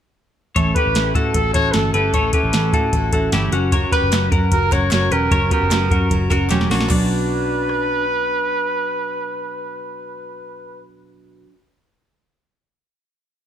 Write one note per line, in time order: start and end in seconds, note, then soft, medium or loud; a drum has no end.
0.55 0.72 A1 medium
0.55 0.75 A2 medium
0.55 0.76 E3 medium
0.55 0.76 A3 medium
0.55 0.76 C#4 medium
0.55 0.75 E4 medium
0.55 0.76 A4 medium
0.55 0.74 A4 medium
0.55 0.76 C#5 medium
0.55 kick medium
0.55 closed hi-hat medium
0.75 0.94 A3 soft
0.75 0.95 C#4 soft
0.75 1.14 G4 medium
0.75 0.95 A4 soft
0.75 1.12 B4 medium
0.75 1.13 B4 medium
0.75 kick medium
0.75 closed hi-hat medium
0.86 0.94 A1 medium
0.94 1.11 A1 medium
0.94 1.15 A2 medium
0.94 1.15 E3 medium
0.94 1.15 A3 medium
0.94 1.15 C#4 medium
0.94 1.14 E4 medium
0.94 1.13 A4 medium
0.94 snare loud
0.94 closed hi-hat medium
1.14 1.31 A2 loud
1.14 1.32 A3 soft
1.14 1.34 C#4 soft
1.14 1.34 E4 soft
1.14 1.53 F#4 medium
1.14 1.34 A4 medium
1.14 1.52 A4 medium
1.14 kick medium
1.14 closed hi-hat medium
1.34 1.51 A1 medium
1.34 1.54 A3 medium
1.34 1.54 C#4 medium
1.34 1.53 E4 medium
1.34 1.53 A4 medium
1.34 1.52 A4 medium
1.34 kick medium
1.34 closed hi-hat loud
1.53 1.71 A1 medium
1.53 1.73 A3 soft
1.53 1.73 C#4 soft
1.53 1.74 E4 medium
1.53 1.92 F#4 medium
1.53 1.74 A4 medium
1.53 1.92 A4 medium
1.53 1.75 C#5 loud
1.53 kick medium
1.53 closed hi-hat medium
1.73 1.90 G1 medium
1.73 1.94 A2 medium
1.73 1.94 E3 medium
1.73 1.94 A3 medium
1.73 1.94 C#4 medium
1.73 1.93 E4 medium
1.73 1.93 A4 medium
1.73 1.92 A4 medium
1.73 snare loud
1.73 closed hi-hat medium
1.93 2.10 G1 medium
1.93 2.13 A3 soft
1.93 2.13 C#4 medium
1.93 2.13 E4 soft
1.93 2.14 G4 medium
1.93 2.31 A4 medium
1.93 2.13 A4 medium
1.93 2.14 B4 medium
1.93 closed hi-hat medium
2.13 2.30 A1 medium
2.13 2.33 A2 medium
2.13 2.34 E3 medium
2.13 2.34 A3 medium
2.13 2.34 C#4 medium
2.13 2.33 E4 medium
2.13 2.31 A4 medium
2.13 2.34 A4 medium
2.13 2.33 C#5 medium
2.13 kick medium
2.13 closed hi-hat medium
2.33 2.53 A3 soft
2.33 2.53 C#4 soft
2.33 2.53 E4 medium
2.33 2.71 G4 medium
2.33 2.53 A4 medium
2.33 3.09 A4 medium
2.33 2.71 B4 medium
2.33 kick loud
2.33 closed hi-hat medium
2.44 2.52 A1 medium
2.53 2.70 A1 loud
2.53 2.73 A2 medium
2.53 2.73 E3 medium
2.53 2.74 A3 medium
2.53 2.73 C#4 medium
2.53 2.72 E4 medium
2.53 2.71 A4 medium
2.53 snare loud
2.53 closed hi-hat medium
2.72 2.90 A2 medium
2.72 2.91 A3 soft
2.72 2.93 C#4 soft
2.72 2.93 E4 soft
2.72 3.11 F#4 medium
2.72 2.93 A4 soft
2.72 3.11 A4 medium
2.72 kick medium
2.72 closed hi-hat medium
2.93 3.09 A1 loud
2.93 3.13 A3 medium
2.93 3.13 C#4 medium
2.93 3.12 E4 medium
2.93 3.11 A4 medium
2.93 kick medium
2.93 closed hi-hat medium
3.12 3.29 A1 medium
3.12 3.32 A3 medium
3.12 3.32 C#4 soft
3.12 3.32 E4 medium
3.12 3.33 F#4 medium
3.12 3.33 A4 medium
3.12 kick medium
3.12 closed hi-hat medium
3.32 3.49 G1 medium
3.32 3.52 A2 medium
3.32 3.53 E3 medium
3.32 3.53 A3 medium
3.32 3.52 C#4 medium
3.32 3.52 E4 medium
3.32 3.53 E4 medium
3.32 3.53 G4 medium
3.32 3.52 A4 medium
3.32 snare loud
3.32 closed hi-hat medium
3.51 3.85 F#1 medium
3.51 3.72 F#3 soft
3.51 3.72 C#4 medium
3.51 3.73 C#4 medium
3.51 3.73 F#4 medium
3.51 3.72 A#4 medium
3.51 closed hi-hat medium
3.72 3.92 F#2 medium
3.72 3.93 C#3 medium
3.72 3.93 F#3 medium
3.72 3.92 C#4 medium
3.72 3.91 F#4 medium
3.72 3.92 A#4 medium
3.72 3.90 A#4 medium
3.72 3.92 C#5 medium
3.72 kick loud
3.72 closed hi-hat medium
3.91 4.11 F#3 soft
3.91 4.12 C#4 soft
3.91 4.12 F#4 medium
3.91 4.31 G4 medium
3.91 4.12 A#4 medium
3.91 4.29 B4 medium
3.91 4.30 B4 medium
3.91 kick medium
3.91 closed hi-hat medium
4.02 4.10 F#1 medium
4.12 4.28 F#1 loud
4.12 4.32 F#2 medium
4.12 4.32 C#3 medium
4.12 4.32 F#3 medium
4.12 4.32 C#4 medium
4.12 4.32 F#4 medium
4.12 4.30 A#4 medium
4.12 snare loud
4.12 clap medium
4.12 closed hi-hat medium
4.32 4.49 F#2 loud
4.32 4.50 F#3 soft
4.32 4.51 C#4 soft
4.32 4.70 F#4 medium
4.32 4.52 F#4 medium
4.32 4.52 A#4 medium
4.32 4.69 A#4 medium
4.32 kick loud
4.32 closed hi-hat medium
4.51 4.68 F#1 loud
4.51 4.71 F#3 medium
4.51 4.72 C#4 medium
4.51 4.71 F#4 medium
4.51 4.74 A#4 loud
4.51 4.70 A#4 medium
4.51 kick medium
4.51 closed hi-hat medium
4.72 4.88 F#1 medium
4.72 4.91 F#3 soft
4.72 4.91 C#4 medium
4.72 4.92 F#4 medium
4.72 5.10 F#4 medium
4.72 4.92 A#4 medium
4.72 5.09 A#4 medium
4.72 4.92 C#5 loud
4.72 kick medium
4.72 clap medium
4.72 closed hi-hat medium
4.91 5.08 F#1 medium
4.91 5.11 F#2 medium
4.91 5.12 C#3 medium
4.91 5.12 F#3 medium
4.91 5.11 C#4 medium
4.91 5.10 F#4 medium
4.91 5.09 A#4 medium
4.91 5.14 C#5 loud
4.91 snare loud
4.91 clap medium
4.91 closed hi-hat medium
5.10 5.28 E1 medium
5.10 5.31 F#3 soft
5.10 5.31 C#4 soft
5.10 5.32 F#4 medium
5.10 5.32 G4 medium
5.10 5.31 A#4 medium
5.10 5.52 A#4 loud
5.10 5.32 B4 medium
5.10 closed hi-hat medium
5.31 5.48 F#1 loud
5.31 5.51 F#2 medium
5.31 5.51 C#3 medium
5.31 5.52 F#3 medium
5.31 5.51 C#4 medium
5.31 5.50 F#4 medium
5.31 5.51 A#4 medium
5.31 5.49 A#4 medium
5.31 5.52 C#5 loud
5.31 kick loud
5.31 closed hi-hat medium
5.50 5.70 F#3 soft
5.50 5.89 B3 medium
5.50 5.71 C#4 medium
5.50 5.71 F#4 medium
5.50 5.89 G4 medium
5.50 5.71 A#4 medium
5.50 6.27 A#4 medium
5.50 kick medium
5.50 closed hi-hat medium
5.61 5.69 F#1 medium
5.70 5.88 F#1 loud
5.70 5.91 F#2 medium
5.70 5.91 C#3 medium
5.70 5.91 F#3 medium
5.70 5.91 C#4 medium
5.70 5.90 F#4 medium
5.70 5.88 A#4 medium
5.70 snare loud
5.70 clap medium
5.70 closed hi-hat loud
5.90 6.07 F#2 loud
5.90 6.08 F#3 soft
5.90 6.10 C#4 soft
5.90 6.11 F#4 soft
5.90 6.29 F#4 medium
5.90 6.10 A#4 medium
5.90 6.29 A#4 medium
5.90 kick loud
5.90 closed hi-hat medium
6.10 6.27 F#1 loud
6.10 6.30 F#3 medium
6.10 6.31 C#4 medium
6.10 6.29 F#4 medium
6.10 6.28 A#4 medium
6.10 kick medium
6.10 closed hi-hat loud
6.30 6.47 F#1 medium
6.30 6.50 F#3 medium
6.30 6.50 C#4 medium
6.30 6.50 F#4 medium
6.30 6.50 A#4 medium
6.30 6.51 A#4 medium
6.30 kick medium
6.30 clap medium
6.30 closed hi-hat medium
6.50 6.67 E1 medium
6.50 6.70 F#2 medium
6.50 6.70 C#3 medium
6.50 6.71 F#3 medium
6.50 6.71 C#4 medium
6.50 6.70 F#4 medium
6.50 6.71 G4 medium
6.50 6.69 A#4 medium
6.50 snare medium
6.50 clap medium
6.50 closed hi-hat loud
6.61 snare medium
6.70 6.87 A#1 medium
6.70 6.89 F#3 medium
6.70 6.91 C#4 medium
6.70 6.89 D4 medium
6.70 6.91 F#4 medium
6.70 6.90 A#4 medium
6.70 snare medium
6.70 open hi-hat medium
6.81 snare medium
6.86 11.45 B2 medium
6.86 10.82 B4 medium
6.86 clap medium
6.90 11.45 B1 medium
6.90 11.49 F#3 medium
6.90 8.05 D4 medium
6.90 11.53 D4 medium
6.90 kick loud
6.90 crash medium
6.97 11.56 C#4 medium
6.97 11.58 F#4 medium
7.69 cross-stick medium